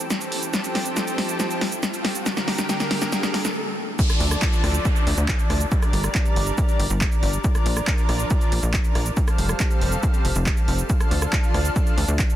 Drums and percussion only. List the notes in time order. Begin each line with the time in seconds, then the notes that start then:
0.10 snare, closed hi-hat, shaker
0.21 closed hi-hat, shaker
0.32 open hi-hat
0.43 closed hi-hat, shaker
0.54 snare, closed hi-hat, shaker
0.64 closed hi-hat, shaker
0.75 snare, open hi-hat
0.86 closed hi-hat, shaker
0.97 snare, closed hi-hat, shaker
1.08 closed hi-hat, shaker
1.18 snare, open hi-hat
1.29 closed hi-hat, shaker
1.40 snare, closed hi-hat, shaker
1.51 closed hi-hat, shaker
1.61 snare, open hi-hat
1.72 closed hi-hat, shaker
1.83 snare, closed hi-hat, shaker
1.94 closed hi-hat, shaker
2.05 snare, open hi-hat
2.15 closed hi-hat, shaker
2.26 snare, closed hi-hat, shaker
2.37 snare, closed hi-hat, shaker
2.48 snare, open hi-hat
2.59 snare, closed hi-hat, shaker
2.69 snare, closed hi-hat, shaker
2.80 snare, closed hi-hat, shaker
2.91 snare, open hi-hat
3.02 snare, closed hi-hat, shaker
3.12 snare, closed hi-hat, shaker
3.23 snare, closed hi-hat, shaker
3.34 snare, open hi-hat
3.45 snare, closed hi-hat, shaker
3.99 kick, closed hi-hat, crash, shaker
4.10 cross-stick, closed hi-hat, shaker
4.20 open hi-hat
4.31 cross-stick, closed hi-hat, shaker
4.42 kick, clap, closed hi-hat, shaker
4.53 closed hi-hat, shaker
4.64 cross-stick, open hi-hat
4.75 closed hi-hat, shaker
4.85 kick, closed hi-hat, shaker
4.96 closed hi-hat, shaker
5.07 open hi-hat
5.18 closed hi-hat, shaker
5.28 kick, clap, closed hi-hat, shaker
5.39 closed hi-hat, shaker
5.50 cross-stick, open hi-hat
5.61 closed hi-hat, shaker
5.72 kick, closed hi-hat, shaker
5.82 cross-stick, closed hi-hat, shaker
5.93 open hi-hat
6.04 cross-stick, shaker
6.15 kick, clap, closed hi-hat, shaker
6.26 closed hi-hat, shaker
6.36 open hi-hat
6.47 closed hi-hat, shaker
6.58 kick, closed hi-hat, shaker
6.69 closed hi-hat, shaker
6.80 open hi-hat
6.90 shaker
7.01 kick, clap, closed hi-hat, shaker
7.12 closed hi-hat, shaker
7.23 open hi-hat
7.34 closed hi-hat, shaker
7.44 kick, closed hi-hat, shaker
7.55 cross-stick, closed hi-hat, shaker
7.66 open hi-hat
7.77 cross-stick, shaker
7.87 kick, clap, closed hi-hat, shaker
7.98 closed hi-hat, shaker
8.09 cross-stick, open hi-hat
8.20 closed hi-hat, shaker
8.30 kick, closed hi-hat, shaker
8.41 closed hi-hat, shaker
8.52 open hi-hat
8.63 closed hi-hat, shaker
8.74 kick, clap, closed hi-hat, shaker
8.84 closed hi-hat, shaker
8.95 cross-stick, open hi-hat
9.06 closed hi-hat, shaker
9.17 kick, closed hi-hat, shaker
9.28 cross-stick, closed hi-hat, shaker
9.38 open hi-hat
9.49 cross-stick, closed hi-hat, shaker
9.60 kick, clap, closed hi-hat, shaker
9.71 closed hi-hat, shaker
9.81 open hi-hat
9.92 shaker
10.03 kick, closed hi-hat, shaker
10.14 closed hi-hat, shaker
10.25 open hi-hat
10.36 closed hi-hat, shaker
10.46 kick, clap, closed hi-hat, shaker
10.57 closed hi-hat, shaker
10.68 open hi-hat
10.79 closed hi-hat, shaker
10.90 kick, closed hi-hat, shaker
11.00 cross-stick, closed hi-hat, shaker
11.11 open hi-hat
11.22 cross-stick, shaker
11.33 kick, clap, closed hi-hat, shaker
11.44 closed hi-hat, shaker
11.54 cross-stick, open hi-hat
11.65 closed hi-hat, shaker
11.76 kick, closed hi-hat, shaker
11.87 closed hi-hat, shaker
11.98 open hi-hat
12.08 shaker
12.19 kick, clap, closed hi-hat, shaker
12.30 closed hi-hat, shaker